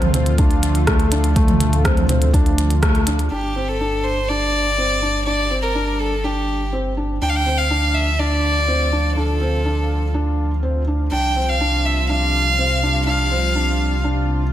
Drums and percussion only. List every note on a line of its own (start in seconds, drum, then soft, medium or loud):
0.02 closed hi-hat soft
0.02 mid tom medium
0.14 closed hi-hat medium
0.26 closed hi-hat soft
0.38 kick loud
0.38 closed hi-hat soft
0.51 closed hi-hat soft
0.63 closed hi-hat medium
0.75 closed hi-hat soft
0.87 kick medium
0.87 cross-stick medium
0.87 closed hi-hat soft
1.00 closed hi-hat soft
1.12 closed hi-hat medium
1.24 closed hi-hat soft
1.36 kick loud
1.36 closed hi-hat soft
1.48 closed hi-hat soft
1.48 mid tom medium
1.60 closed hi-hat medium
1.73 closed hi-hat soft
1.85 kick loud
1.85 cross-stick medium
1.85 closed hi-hat soft
1.97 closed hi-hat soft
1.97 mid tom medium
2.09 closed hi-hat medium
2.22 closed hi-hat soft
2.34 kick loud
2.34 closed hi-hat soft
2.46 closed hi-hat soft
2.58 closed hi-hat medium
2.71 closed hi-hat soft
2.82 kick loud
2.82 cross-stick medium
2.82 closed hi-hat soft
2.95 closed hi-hat soft
3.07 closed hi-hat medium
3.19 closed hi-hat soft